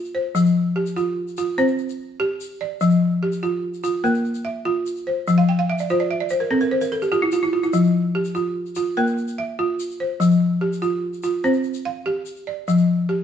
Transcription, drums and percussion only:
0.05 shaker
0.36 shaker
0.46 shaker
0.86 shaker
0.97 shaker
1.28 shaker
1.37 shaker
1.58 shaker
1.68 shaker
1.78 shaker
1.89 shaker
2.41 shaker
2.81 shaker
2.90 shaker
3.32 shaker
3.42 shaker
3.74 shaker
3.84 shaker
4.05 shaker
4.15 shaker
4.25 shaker
4.34 shaker
4.86 shaker
4.96 shaker
5.27 shaker
5.78 shaker
5.89 shaker
6.29 shaker
6.60 shaker
6.81 shaker
6.92 shaker
7.02 shaker
7.12 shaker
7.32 shaker
7.63 shaker
7.73 shaker
7.83 shaker
8.25 shaker
8.36 shaker
8.66 shaker
8.75 shaker
8.96 shaker
9.07 shaker
9.18 shaker
9.28 shaker
9.80 shaker
9.91 shaker
10.21 shaker
10.31 shaker
10.73 shaker
10.82 shaker
11.13 shaker
11.23 shaker
11.43 shaker
11.53 shaker
11.63 shaker
11.74 shaker
12.26 shaker
12.37 shaker
12.68 shaker
12.78 shaker

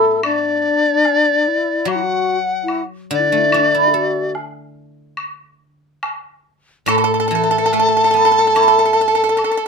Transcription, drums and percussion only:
0.23 high woodblock
1.05 low woodblock
1.88 high woodblock
2.68 high woodblock
3.52 high woodblock
4.35 low woodblock
5.17 high woodblock
6.03 high woodblock, low woodblock
6.88 high woodblock
7.73 low woodblock
8.56 high woodblock
9.38 high woodblock

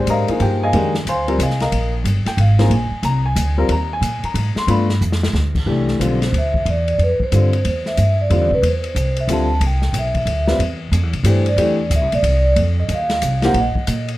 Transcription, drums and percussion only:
0.07 hi-hat pedal, ride
0.28 ride
0.40 ride
0.73 ride
0.95 snare
1.07 hi-hat pedal, ride
1.28 ride
1.40 hi-hat pedal, ride
1.50 snare
1.60 snare, ride
1.72 ride
2.05 hi-hat pedal, ride
2.26 snare, ride
2.38 ride
2.59 snare, ride
2.71 ride
3.03 hi-hat pedal, ride
3.36 hi-hat pedal, ride
3.69 ride
4.02 hi-hat pedal, ride
4.24 ride
4.35 ride
4.56 snare
4.68 ride
4.89 snare
5.01 hi-hat pedal
5.12 snare
5.23 snare
5.35 snare
5.55 kick, crash
5.88 snare
6.01 hi-hat pedal, ride
6.22 snare, ride
6.34 ride
6.54 kick
6.66 ride
6.88 ride
6.99 ride
7.20 kick
7.32 hi-hat pedal, ride
7.53 ride
7.65 ride
7.86 snare
7.97 hi-hat pedal, ride
8.30 ride
8.51 kick
8.63 ride
8.84 ride
8.96 hi-hat pedal, ride
9.16 ride
9.29 hi-hat pedal, ride
9.61 ride
9.82 snare
9.94 hi-hat pedal, ride
10.15 kick, ride
10.27 ride
10.48 snare
10.60 ride
10.93 hi-hat pedal, ride
11.13 ride
11.25 hi-hat pedal, ride
11.46 ride
11.58 ride
11.91 hi-hat pedal, ride
12.12 ride
12.24 ride
12.56 ride
12.89 hi-hat pedal, ride
13.10 snare, ride
13.22 hi-hat pedal, ride
13.42 snare, ride
13.54 ride
13.75 kick
13.87 hi-hat pedal, ride
14.08 ride

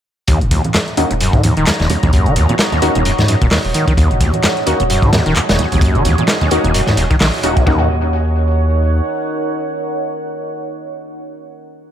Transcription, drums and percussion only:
0.28 kick, closed hi-hat
0.41 closed hi-hat
0.51 kick, closed hi-hat
0.64 closed hi-hat, high conga
0.74 snare, clap, closed hi-hat
0.88 closed hi-hat
0.97 closed hi-hat
1.11 closed hi-hat
1.20 closed hi-hat
1.33 kick, closed hi-hat
1.43 closed hi-hat, high conga
1.57 closed hi-hat
1.67 snare, clap, closed hi-hat
1.80 snare, closed hi-hat
1.90 closed hi-hat, low conga
2.03 kick, closed hi-hat, low conga
2.13 kick, closed hi-hat
2.26 closed hi-hat
2.36 closed hi-hat
2.49 closed hi-hat, high conga, low conga
2.59 snare, clap, closed hi-hat
2.72 closed hi-hat, low conga
2.82 closed hi-hat
2.95 closed hi-hat, low conga
3.05 closed hi-hat
3.19 snare, closed hi-hat
3.28 closed hi-hat
3.42 kick, closed hi-hat
3.51 snare, clap, closed hi-hat, open hi-hat
3.65 closed hi-hat
3.74 closed hi-hat
3.88 kick, closed hi-hat
3.97 kick, closed hi-hat
4.11 closed hi-hat
4.20 kick, closed hi-hat
4.33 closed hi-hat, high conga
4.43 snare, clap, closed hi-hat
4.57 closed hi-hat
4.66 closed hi-hat
4.80 closed hi-hat
4.90 closed hi-hat
5.02 kick, closed hi-hat
5.13 snare, closed hi-hat, high conga
5.26 closed hi-hat
5.35 clap, closed hi-hat
5.49 snare, closed hi-hat
5.58 closed hi-hat, low conga
5.72 closed hi-hat, low conga
5.81 kick, closed hi-hat
5.95 closed hi-hat
6.05 closed hi-hat, high conga
6.18 closed hi-hat, high conga, low conga
6.28 snare, clap, closed hi-hat
6.41 closed hi-hat, low conga
6.51 closed hi-hat
6.64 closed hi-hat, low conga
6.74 closed hi-hat
6.87 snare, closed hi-hat
6.97 closed hi-hat
7.11 kick, closed hi-hat
7.20 snare, clap, closed hi-hat, open hi-hat
7.34 closed hi-hat
7.43 closed hi-hat
7.57 kick, closed hi-hat
7.67 kick, floor tom

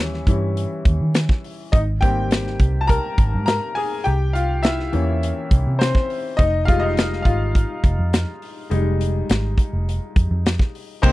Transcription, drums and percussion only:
0.14 snare
0.27 kick, closed hi-hat
0.57 closed hi-hat
0.85 kick, closed hi-hat
1.15 snare, closed hi-hat
1.29 kick, snare
1.44 open hi-hat
1.73 kick, closed hi-hat
2.02 kick, closed hi-hat
2.31 snare, closed hi-hat
2.47 snare
2.60 kick, closed hi-hat
2.89 kick, closed hi-hat
3.18 kick, closed hi-hat
3.47 snare, closed hi-hat
3.76 open hi-hat
4.05 closed hi-hat
4.35 closed hi-hat
4.63 snare, closed hi-hat
4.79 snare
4.93 closed hi-hat
5.23 closed hi-hat
5.51 kick, closed hi-hat
5.81 snare, closed hi-hat
5.95 kick, snare
6.10 open hi-hat
6.39 kick, closed hi-hat
6.68 kick, closed hi-hat
6.97 snare, closed hi-hat
7.13 snare
7.25 kick, closed hi-hat
7.55 kick, closed hi-hat
7.84 kick, closed hi-hat
8.13 snare, closed hi-hat
8.42 open hi-hat
8.71 closed hi-hat
9.01 closed hi-hat
9.30 snare, closed hi-hat
9.58 kick, closed hi-hat
9.89 closed hi-hat
10.16 kick, closed hi-hat
10.46 snare, closed hi-hat
10.59 kick, snare
10.75 open hi-hat
11.03 kick, crash

